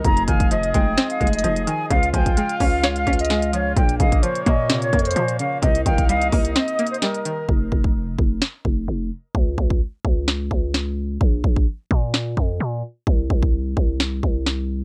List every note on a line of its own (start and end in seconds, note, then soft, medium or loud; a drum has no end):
0.04 0.27 F1 loud
0.04 1.21 F2 loud
0.04 1.89 F3 medium
0.04 1.89 D#4 medium
0.04 1.89 G#4 medium
0.04 0.23 A#5 loud
0.04 kick loud
0.04 closed hi-hat medium
0.17 closed hi-hat medium
0.27 0.72 F1 loud
0.27 1.44 D#3 medium
0.27 0.49 F5 medium
0.27 0.47 G#5 medium
0.27 kick loud
0.27 closed hi-hat medium
0.40 kick loud
0.40 closed hi-hat medium
0.51 1.43 F3 medium
0.51 1.86 D#5 medium
0.51 0.70 D#5 medium
0.51 closed hi-hat medium
0.63 closed hi-hat medium
0.74 0.97 F1 loud
0.74 1.19 G#3 loud
0.74 1.08 G5 medium
0.74 kick loud
0.74 closed hi-hat medium
0.97 1.90 C4 loud
0.97 snare loud
0.97 closed hi-hat medium
1.10 1.29 F5 medium
1.10 closed hi-hat medium
1.20 1.43 F1 loud
1.20 1.90 G#3 medium
1.20 kick medium
1.20 closed hi-hat soft
1.27 closed hi-hat medium
1.33 1.65 D#5 medium
1.33 closed hi-hat medium
1.39 closed hi-hat medium
1.44 1.66 F1 loud
1.44 1.90 F3 medium
1.44 closed hi-hat medium
1.56 closed hi-hat medium
1.67 1.91 D#3 medium
1.67 1.86 G#5 medium
1.67 closed hi-hat medium
1.90 2.13 C#2 loud
1.90 3.07 C#3 loud
1.90 3.75 C#3 medium
1.90 3.75 G#3 medium
1.90 3.75 F4 medium
1.90 2.09 F5 loud
1.90 kick loud
1.90 closed hi-hat medium
2.03 closed hi-hat medium
2.13 2.36 C#2 loud
2.13 3.30 F3 medium
2.13 2.36 G5 medium
2.13 2.32 G#5 medium
2.13 kick loud
2.13 closed hi-hat medium
2.26 kick loud
2.26 closed hi-hat medium
2.37 3.29 G#3 medium
2.37 3.73 F5 medium
2.37 2.56 G5 medium
2.37 closed hi-hat medium
2.49 closed hi-hat medium
2.60 3.05 C#2 loud
2.60 3.06 C#4 medium
2.60 2.94 F5 medium
2.60 kick loud
2.60 open hi-hat medium
2.83 3.77 C#5 loud
2.83 snare loud
2.83 closed hi-hat medium
2.96 3.15 F5 medium
2.96 closed hi-hat medium
3.07 3.74 C#2 loud
3.07 3.77 C#4 medium
3.07 kick medium
3.07 closed hi-hat soft
3.13 closed hi-hat medium
3.19 3.51 D#5 medium
3.19 closed hi-hat medium
3.25 closed hi-hat medium
3.30 3.77 G#3 medium
3.30 snare loud
3.30 closed hi-hat medium
3.42 closed hi-hat medium
3.53 3.77 F3 medium
3.53 3.72 C#5 medium
3.53 closed hi-hat medium
3.76 3.99 A#1 loud
3.76 4.93 A#2 loud
3.76 5.61 A#2 medium
3.76 5.61 A#3 medium
3.76 3.95 G5 loud
3.76 kick loud
3.76 closed hi-hat medium
3.89 closed hi-hat medium
4.00 4.22 A#1 loud
4.00 5.16 C#3 medium
4.00 4.22 D#5 medium
4.00 4.18 F5 medium
4.00 kick loud
4.00 closed hi-hat medium
4.12 kick loud
4.12 closed hi-hat medium
4.22 5.15 F3 medium
4.22 4.42 C5 medium
4.22 5.58 C#5 medium
4.22 closed hi-hat medium
4.35 closed hi-hat medium
4.46 4.91 A#2 loud
4.46 4.92 A#3 medium
4.46 4.80 D#5 medium
4.46 kick loud
4.46 closed hi-hat medium
4.70 5.61 C3 loud
4.70 snare loud
4.70 closed hi-hat medium
4.82 5.01 C#5 medium
4.82 closed hi-hat medium
4.93 5.15 F2 loud
4.93 5.63 A#3 medium
4.93 kick medium
4.93 closed hi-hat soft
4.99 closed hi-hat medium
5.05 5.37 C5 medium
5.05 closed hi-hat medium
5.11 closed hi-hat medium
5.16 5.38 A#2 loud
5.16 5.62 F3 medium
5.16 closed hi-hat medium
5.28 closed hi-hat medium
5.39 5.63 C#3 medium
5.39 5.58 F5 medium
5.39 closed hi-hat medium
5.62 5.85 C2 loud
5.62 6.79 C3 loud
5.62 7.47 C3 medium
5.62 7.47 A#3 medium
5.62 7.47 D#4 medium
5.62 5.81 D#5 loud
5.62 kick loud
5.62 closed hi-hat medium
5.75 closed hi-hat medium
5.86 6.31 C2 loud
5.86 7.02 D#3 medium
5.86 6.08 F5 medium
5.86 6.04 G5 medium
5.86 kick loud
5.86 closed hi-hat medium
5.98 kick loud
5.98 closed hi-hat medium
6.09 7.01 G3 medium
6.09 7.21 D#5 medium
6.09 6.28 F5 medium
6.09 closed hi-hat medium
6.22 closed hi-hat medium
6.32 6.55 C2 loud
6.32 6.78 A#3 medium
6.32 6.51 D#5 medium
6.32 kick loud
6.32 closed hi-hat soft
6.32 open hi-hat medium
6.45 closed hi-hat medium
6.56 7.49 C4 medium
6.56 6.89 D#5 medium
6.56 snare loud
6.56 closed hi-hat medium
6.68 closed hi-hat medium
6.79 7.49 A#3 medium
6.79 closed hi-hat medium
6.87 closed hi-hat medium
6.91 7.00 C5 medium
6.91 closed hi-hat soft
7.02 7.49 G3 loud
7.02 7.46 A#4 medium
7.02 snare loud
7.02 closed hi-hat medium
7.14 closed hi-hat medium
7.25 7.49 D#3 medium
7.25 7.48 A#4 medium
7.25 closed hi-hat medium
7.49 7.71 F1 loud
7.49 kick loud
7.72 8.17 F1 loud
7.72 kick medium
7.84 kick loud
8.19 8.41 F1 loud
8.19 kick loud
8.42 snare loud
8.65 8.87 F1 loud
8.65 kick medium
8.88 9.11 F1 loud
9.35 9.57 C#2 loud
9.35 kick loud
9.58 9.80 C#2 loud
9.58 kick medium
9.70 kick loud
10.05 10.49 C#2 loud
10.05 kick loud
10.28 snare loud
10.51 11.18 C#2 loud
10.51 kick medium
10.74 snare loud
11.21 11.43 A#1 loud
11.21 kick loud
11.44 11.66 A#1 loud
11.44 kick loud
11.56 kick loud
11.91 12.35 A#2 loud
11.91 kick loud
12.14 snare loud
12.37 12.59 F2 loud
12.37 kick medium
12.60 12.83 A#2 loud
13.07 13.29 C2 loud
13.07 kick loud
13.30 13.75 C2 loud
13.30 kick loud
13.43 kick loud
13.77 14.21 C2 loud
13.77 kick loud
14.00 snare loud
14.23 14.84 C2 loud
14.23 kick medium
14.46 snare loud